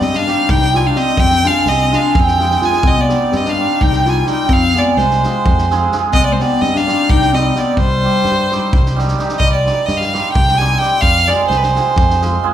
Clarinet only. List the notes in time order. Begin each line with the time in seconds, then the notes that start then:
0.03 C4
0.17 D4
0.50 D#4
0.75 F4
0.87 D4
0.97 C4
1.19 C4
1.45 D4
1.69 C4
1.93 D4
2.17 C4
2.62 F4
2.84 C4
2.98 B3
3.32 C4
3.47 D4
3.82 D#4
4.07 F4
4.29 D#4
4.49 C4
4.74 B3
4.98 G#3
6.13 C4
6.26 B3
6.31 G#3
6.40 B3
6.62 C4
6.75 D4
7.10 D#4
7.33 C4
7.56 B3
7.77 G3